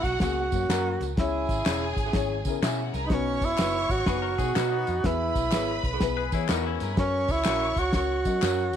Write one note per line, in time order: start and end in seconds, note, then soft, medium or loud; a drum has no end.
0.00 0.18 B1 medium
0.00 0.97 F#4 loud
0.00 0.97 F#5 loud
0.00 kick medium
0.04 0.21 F#4 loud
0.04 closed hi-hat medium
0.20 0.48 C#2 loud
0.20 0.41 A#3 medium
0.20 0.42 C#4 medium
0.20 1.14 F#4 medium
0.20 0.42 F#4 medium
0.20 0.42 G#4 medium
0.20 kick medium
0.20 snare loud
0.20 closed hi-hat medium
0.20 tambourine medium
0.51 0.67 F#2 medium
0.51 0.63 A#3 medium
0.51 0.63 C#4 medium
0.51 0.63 F#4 medium
0.51 0.63 C#5 medium
0.51 kick medium
0.51 closed hi-hat medium
0.51 tambourine medium
0.69 0.96 F#2 loud
0.69 1.06 A#3 medium
0.69 1.06 C#4 medium
0.69 0.89 C#4 medium
0.69 0.89 F#4 loud
0.69 1.06 F#4 medium
0.69 0.89 A#4 medium
0.69 1.07 A#4 medium
0.69 snare loud
0.69 clap medium
0.69 closed hi-hat medium
0.69 tambourine medium
1.00 1.15 C#2 medium
1.00 snare soft
1.00 closed hi-hat medium
1.00 tambourine soft
1.17 1.45 C#2 medium
1.17 1.94 C#3 medium
1.17 1.54 C#4 medium
1.17 1.55 E4 medium
1.17 1.94 E4 medium
1.17 2.56 G#4 loud
1.17 1.55 G#4 medium
1.17 1.55 C#5 medium
1.17 2.56 G#5 loud
1.17 kick loud
1.17 snare loud
1.17 closed hi-hat medium
1.17 tambourine soft
1.49 1.63 G#1 medium
1.49 kick medium
1.49 closed hi-hat medium
1.49 tambourine soft
1.66 1.93 E1 medium
1.66 2.02 C#4 medium
1.66 1.85 C#4 medium
1.66 2.03 E4 medium
1.66 1.86 E4 medium
1.66 2.03 G#4 medium
1.66 1.86 G#4 medium
1.66 2.03 C#5 medium
1.66 snare loud
1.66 clap medium
1.66 closed hi-hat medium
1.66 tambourine medium
1.97 2.11 G#1 medium
1.97 kick medium
1.97 closed hi-hat medium
1.97 tambourine soft
2.06 2.14 C#4 medium
2.06 2.14 E4 medium
2.06 2.14 G#4 medium
2.13 2.41 G#1 loud
2.13 2.35 C#4 medium
2.13 2.35 E4 medium
2.13 2.35 G#4 medium
2.13 2.35 C#5 loud
2.13 kick medium
2.13 snare loud
2.13 closed hi-hat medium
2.13 tambourine medium
2.45 2.60 C#3 medium
2.45 2.57 C#4 medium
2.45 2.57 E4 medium
2.45 2.57 G#4 medium
2.45 2.57 A#4 medium
2.45 kick medium
2.45 closed hi-hat medium
2.45 tambourine medium
2.62 2.90 B2 medium
2.62 2.99 C#4 medium
2.62 2.82 C#4 medium
2.62 2.73 D#4 medium
2.62 2.99 E4 medium
2.62 2.82 E4 medium
2.62 2.99 G#4 medium
2.62 2.82 G#4 medium
2.62 2.73 D#5 medium
2.62 3.00 E5 medium
2.62 snare loud
2.62 clap medium
2.62 closed hi-hat medium
2.62 tambourine medium
2.74 2.79 E4 medium
2.74 2.79 E5 medium
2.78 2.94 F#4 medium
2.78 2.94 F#5 medium
2.93 3.08 C2 medium
2.93 2.96 G#4 medium
2.93 3.04 A#4 medium
2.93 2.96 G#5 medium
2.93 3.05 A#5 medium
2.93 snare soft
2.93 closed hi-hat medium
2.93 tambourine soft
3.04 3.15 D#4 medium
3.04 3.10 B4 medium
3.04 3.10 B5 medium
3.09 3.42 B1 medium
3.09 3.87 B2 medium
3.09 3.47 B3 medium
3.09 3.47 D#4 medium
3.09 3.47 F#4 medium
3.09 3.47 B4 loud
3.09 4.83 C#5 loud
3.09 4.83 C#6 loud
3.09 kick loud
3.09 snare loud
3.09 closed hi-hat medium
3.09 tambourine soft
3.14 3.46 C#4 medium
3.41 3.57 F#1 medium
3.41 3.93 E4 loud
3.41 kick medium
3.41 closed hi-hat medium
3.41 tambourine medium
3.58 3.86 F#1 medium
3.58 3.95 B3 medium
3.58 3.78 D#4 medium
3.58 3.96 D#4 medium
3.58 3.79 F#4 medium
3.58 3.96 F#4 medium
3.58 3.96 B4 medium
3.58 3.79 B4 medium
3.58 snare loud
3.58 clap medium
3.58 closed hi-hat medium
3.58 tambourine medium
3.89 4.05 G#1 medium
3.89 4.08 F#4 medium
3.89 kick medium
3.89 closed hi-hat medium
3.89 tambourine soft
4.06 4.35 F#1 loud
4.06 4.27 B3 medium
4.06 4.28 D#4 medium
4.06 4.28 F#4 medium
4.06 5.08 F#4 medium
4.06 4.23 G#4 medium
4.06 4.22 B4 medium
4.06 4.28 B4 medium
4.06 kick medium
4.06 snare loud
4.06 closed hi-hat medium
4.06 tambourine medium
4.22 4.38 F#4 medium
4.22 4.38 A#4 medium
4.38 4.53 B2 medium
4.38 4.50 B3 medium
4.38 4.50 D#4 medium
4.38 4.50 F#4 medium
4.38 4.54 G#4 medium
4.38 4.50 G#4 medium
4.38 kick medium
4.38 closed hi-hat medium
4.38 tambourine medium
4.55 4.83 B2 medium
4.55 4.92 B3 medium
4.55 4.92 D#4 medium
4.55 4.75 D#4 medium
4.55 4.70 D#4 medium
4.55 4.92 F#4 medium
4.55 4.71 F#4 medium
4.55 4.76 F#4 medium
4.55 4.75 B4 loud
4.55 4.93 B4 medium
4.55 snare loud
4.55 clap medium
4.55 closed hi-hat medium
4.55 tambourine medium
4.71 5.03 B3 medium
4.71 5.02 D#4 medium
4.87 5.02 F2 medium
4.87 closed hi-hat medium
4.87 tambourine soft
5.03 5.31 E2 medium
5.03 5.80 E3 medium
5.03 5.40 B3 medium
5.03 5.40 E4 medium
5.03 5.85 E4 medium
5.03 5.41 G#4 medium
5.03 6.43 B4 loud
5.03 5.41 B4 loud
5.03 6.43 B5 loud
5.03 kick loud
5.03 snare loud
5.03 closed hi-hat loud
5.03 tambourine soft
5.35 5.53 B1 medium
5.35 kick medium
5.35 closed hi-hat medium
5.35 tambourine soft
5.52 5.80 G#1 medium
5.52 5.89 B3 medium
5.52 5.89 E4 medium
5.52 5.72 E4 medium
5.52 5.89 G#4 medium
5.52 5.72 G#4 medium
5.52 5.73 B4 medium
5.52 5.89 C#5 medium
5.52 snare loud
5.52 clap medium
5.52 closed hi-hat medium
5.52 tambourine medium
5.84 5.98 B1 medium
5.84 kick medium
5.84 closed hi-hat medium
5.93 6.01 E4 soft
5.93 6.01 G#4 medium
5.93 6.01 B4 medium
6.00 6.28 B1 loud
6.00 6.21 B3 medium
6.00 6.21 E4 medium
6.00 6.21 G#4 medium
6.00 6.22 B4 medium
6.00 kick medium
6.00 snare loud
6.00 closed hi-hat medium
6.00 tambourine medium
6.17 6.32 G#4 medium
6.17 6.32 B4 medium
6.32 6.47 E3 medium
6.32 6.43 B3 medium
6.32 6.43 E4 medium
6.32 6.49 E4 medium
6.32 6.49 G#4 medium
6.32 6.44 G#4 medium
6.32 6.44 C#5 medium
6.32 kick medium
6.32 closed hi-hat medium
6.32 tambourine medium
6.49 6.77 E2 medium
6.49 6.85 B3 medium
6.49 6.60 D#4 medium
6.49 6.65 D#4 medium
6.49 6.86 E4 medium
6.49 6.69 E4 medium
6.49 6.65 F#4 medium
6.49 6.86 G#4 medium
6.49 6.69 G#4 medium
6.49 6.86 A#4 medium
6.49 6.69 B4 medium
6.49 6.60 D#5 medium
6.49 snare loud
6.49 clap medium
6.49 closed hi-hat medium
6.49 tambourine medium
6.60 6.65 E4 medium
6.60 6.65 E5 medium
6.66 6.97 C#4 medium
6.66 6.96 E4 medium
6.66 6.81 F#4 medium
6.66 6.81 F#5 medium
6.80 6.95 G2 medium
6.80 6.83 G#4 medium
6.80 6.92 A#4 medium
6.80 6.83 G#5 medium
6.80 6.92 A#5 medium
6.80 snare soft
6.80 closed hi-hat medium
6.80 tambourine soft
6.93 7.34 C#4 medium
6.93 6.98 B4 medium
6.93 8.70 C#5 loud
6.93 6.98 B5 medium
6.97 7.25 F#2 loud
6.97 7.33 C#4 medium
6.97 7.34 F#4 medium
6.97 7.34 A#4 medium
6.97 7.34 C#5 loud
6.97 8.70 C#6 loud
6.97 kick loud
6.97 snare loud
6.97 closed hi-hat medium
6.97 tambourine soft
7.28 7.43 C#2 medium
7.28 7.81 E4 loud
7.28 kick medium
7.28 closed hi-hat medium
7.28 tambourine soft
7.44 7.73 A#1 medium
7.44 7.81 C#4 medium
7.44 7.65 C#4 medium
7.44 7.82 F#4 medium
7.44 7.65 F#4 medium
7.44 7.82 A#4 medium
7.44 7.66 A#4 medium
7.44 7.82 C#5 medium
7.44 snare loud
7.44 clap medium
7.44 closed hi-hat medium
7.44 tambourine medium
7.76 7.91 C#2 medium
7.76 7.95 F#4 loud
7.76 kick medium
7.76 closed hi-hat medium
7.76 tambourine soft
7.93 8.21 C#2 loud
7.93 8.14 C#4 medium
7.93 8.14 F#4 medium
7.93 8.77 F#4 medium
7.93 8.14 A#4 medium
7.93 8.14 C#5 medium
7.93 kick medium
7.93 snare loud
7.93 closed hi-hat medium
7.93 tambourine medium
8.25 8.40 F#3 medium
8.25 8.36 C#4 medium
8.25 8.36 F#4 medium
8.25 8.36 A#4 medium
8.25 8.37 D#5 medium
8.25 kick medium
8.25 closed hi-hat medium
8.25 tambourine medium
8.42 8.74 F#2 medium
8.42 8.77 C#4 medium
8.42 8.62 C#4 medium
8.42 8.77 F#4 medium
8.42 8.62 F#4 medium
8.42 8.77 A#4 medium
8.42 8.62 A#4 medium
8.42 8.77 C#5 medium
8.42 snare loud
8.42 clap medium
8.42 closed hi-hat medium
8.42 tambourine medium
8.73 closed hi-hat medium
8.73 tambourine soft